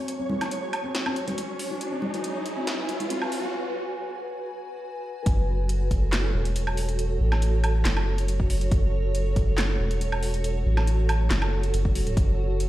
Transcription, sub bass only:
5.26 5.89 F#1 loud
5.91 6.32 F#1 loud
6.34 7.19 E1 loud
7.20 7.83 A1 loud
7.85 8.70 F#1 loud
8.72 9.35 F#1 loud
9.36 9.78 F#1 loud
9.80 10.64 E1 medium
10.66 11.29 A1 loud
11.30 11.72 F#1 medium
11.74 12.15 F#1 medium
12.17 12.69 F#1 loud

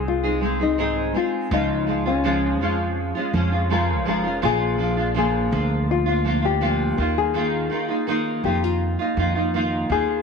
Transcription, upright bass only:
0.00 1.11 C2 medium
1.51 2.61 C#2 medium
2.61 3.11 F2 medium
3.34 4.06 F2 medium
4.06 4.40 F1 medium
4.43 5.48 A#1 medium
5.52 6.94 D2 medium
6.98 7.67 D#2 medium
8.44 8.95 F2 medium
9.17 9.86 F2 medium
9.89 10.22 D#2 medium

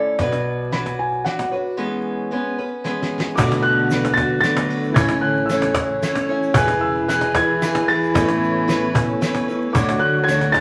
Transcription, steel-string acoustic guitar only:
0.00 0.19 A3 medium
0.00 0.20 C#4 medium
0.00 0.20 E4 medium
0.00 0.20 A4 medium
0.20 0.72 B2 medium
0.20 0.71 F#3 medium
0.20 0.72 D4 medium
0.20 0.72 F#4 medium
0.20 0.74 B4 medium
0.72 1.24 F#3 medium
0.72 1.25 D4 medium
0.72 1.25 F#4 medium
0.72 1.27 B4 medium
1.25 1.51 F#3 soft
1.25 1.52 D4 medium
1.25 1.52 F#4 medium
1.25 1.51 B4 medium
1.52 1.78 D4 soft
1.52 1.78 F#4 soft
1.52 1.77 B4 soft
1.77 2.31 E3 medium
1.77 2.30 G#3 medium
1.77 2.31 B3 medium
1.77 2.31 C#4 medium
1.77 2.32 B4 medium
2.31 2.58 G#3 medium
2.31 2.58 B3 medium
2.31 2.58 C#4 medium
2.31 2.57 B4 medium
2.58 2.84 B3 soft
2.58 2.84 C#4 soft
2.58 2.85 B4 soft
2.84 3.37 G#3 medium
2.84 3.38 B3 medium
2.84 3.38 C#4 medium
2.84 3.38 B4 medium
3.37 3.90 B2 medium
3.37 3.91 A3 medium
3.37 3.91 D4 medium
3.37 3.91 F#4 medium
3.37 3.91 B4 medium
3.91 4.18 A3 medium
3.91 4.18 D4 medium
3.91 4.18 F#4 medium
3.91 4.17 B4 medium
4.18 4.43 D4 soft
4.18 4.44 F#4 soft
4.18 4.44 B4 medium
4.43 4.95 A3 medium
4.43 4.97 D4 medium
4.43 4.97 F#4 medium
4.43 4.97 B4 medium
4.96 5.49 A3 medium
4.96 5.50 C#4 medium
4.96 5.51 E4 medium
4.96 5.51 C#5 medium
5.50 5.77 A3 medium
5.50 5.76 C#4 medium
5.50 5.77 E4 medium
5.50 5.75 C#5 medium
5.76 6.03 C#4 soft
5.76 6.02 E4 soft
5.76 6.03 C#5 medium
6.03 6.30 A3 medium
6.03 6.29 C#4 medium
6.03 6.30 E4 medium
6.03 6.28 C#5 medium
6.29 6.56 C#4 soft
6.29 6.56 E4 soft
6.29 6.56 C#5 medium
6.56 7.08 E3 medium
6.56 7.09 E4 medium
6.56 7.09 G#4 medium
6.56 7.10 B4 medium
7.09 7.36 E3 medium
7.09 7.36 E4 medium
7.09 7.36 G#4 medium
7.09 7.35 B4 medium
7.36 7.62 E4 soft
7.36 7.63 G#4 soft
7.36 7.62 B4 medium
7.63 7.89 E3 medium
7.63 7.90 E4 medium
7.63 7.89 G#4 medium
7.63 7.88 B4 medium
7.89 8.14 E4 soft
7.89 8.15 G#4 soft
7.89 8.14 B4 soft
8.14 8.67 A3 medium
8.14 8.69 C#4 medium
8.14 8.67 E4 medium
8.14 8.68 B4 medium
8.68 8.95 A3 medium
8.68 8.94 C#4 medium
8.68 8.95 E4 medium
8.68 8.93 B4 medium
8.94 9.21 C#4 medium
8.94 9.21 E4 soft
8.94 9.21 B4 medium
9.21 9.48 A3 medium
9.21 9.48 C#4 medium
9.21 9.48 E4 medium
9.21 9.47 B4 medium
9.48 9.75 C#4 soft
9.48 9.76 E4 soft
9.48 9.75 B4 medium
9.75 10.28 D3 medium
9.75 10.28 F#3 medium
9.75 10.28 A3 medium
9.75 10.28 D4 medium
9.75 10.28 F#4 medium
9.75 10.29 C#5 loud
10.29 10.55 A3 medium
10.29 10.55 D4 medium
10.29 10.55 F#4 medium
10.29 10.54 C#5 medium
10.55 10.61 A3 soft
10.55 10.61 D4 soft
10.55 10.61 F#4 soft
10.55 10.61 C#5 soft

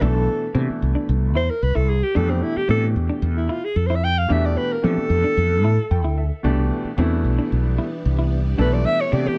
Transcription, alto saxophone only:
0.02 0.55 A4 medium
1.36 1.52 C5 loud
1.50 1.65 A#4 medium
1.63 1.77 B4 medium
1.76 1.91 A4 medium
1.89 2.05 G#4 medium
2.04 2.18 G4 medium
2.17 2.32 A4 medium
2.31 2.44 C4 medium
2.43 2.59 E4 loud
2.57 2.70 G4 medium
2.70 2.86 A4 loud
3.37 3.51 E4 medium
3.50 3.66 F4 medium
3.65 3.78 G#4 medium
3.77 3.88 A4 medium
3.87 3.97 C5 medium
3.95 4.06 E5 medium
4.04 4.20 G5 loud
4.18 4.34 F5 medium
4.32 4.47 E5 medium
4.46 4.59 D5 medium
4.57 4.74 B4 medium
4.73 4.86 A#4 medium
4.84 6.45 A4 loud
8.61 8.75 B4 medium
8.74 8.87 D5 loud
8.86 9.02 E5 loud
9.01 9.16 C#5 loud
9.14 9.29 D5 loud
9.28 9.38 G4 medium

